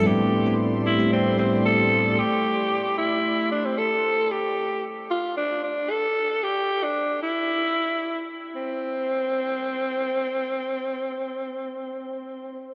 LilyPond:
<<
  \new Staff \with { instrumentName = "Analog synth pad" } { \time 4/4 \key c \major \tempo 4 = 113 <a g' d'' b'' c'''>1~ | <a g' d'' b'' c'''>1 | r1 | r1 |
r1 | r1 | }
  \new Staff \with { instrumentName = "Alto saxophone" } { \time 4/4 \key c \major g'4 r8 e'8 c'8 c'8 a'4 | g'4. e'4 d'16 c'16 a'4 | g'4 r8 f'8 d'8 d'8 a'4 | g'8. d'8. e'2 r8 |
c'1~ | c'1 | }
  \new Staff \with { instrumentName = "Tine electric piano" } { \time 4/4 \key c \major <a, g b c' d' e'>8 r16 <a, g b c' d' e'>8. r16 <a, g b c' d' e'>8 r16 <a, g b c' d' e'>4. | r1 | r1 | r1 |
r1 | r1 | }
>>